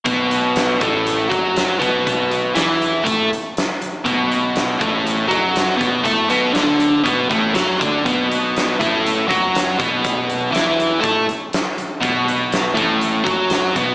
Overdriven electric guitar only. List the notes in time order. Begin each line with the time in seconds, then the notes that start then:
0.05 B2 B3
0.80 A2 A3
1.29 F#3 F#4
1.79 B2 B3
2.55 E3 E4
3.04 A3 A4
4.04 B2 B3
4.79 A2 A3
5.28 F#3 F#4
5.76 B2 B3
6.03 A3 A4
6.28 B2 B3
6.53 D3 D4
7.04 B2 B3
7.29 A2 A3
7.54 F#3 F#4
7.80 D3 D4
8.05 B2 B3
8.80 A2 A3
9.28 F#3 F#4
9.79 B2 B3
10.51 E3 E4
11.00 A3 A4
12.00 B2 B3
12.74 A2 A3
13.24 F#3 F#4
13.76 B2 B3